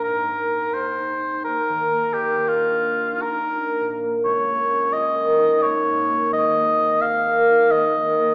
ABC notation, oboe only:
X:1
M:3/4
L:1/8
Q:1/4=86
K:Ablyd
V:1 name="Oboe"
B2 c2 B2 | G F2 B2 z | _d2 e2 d2 | e2 f2 e2 |]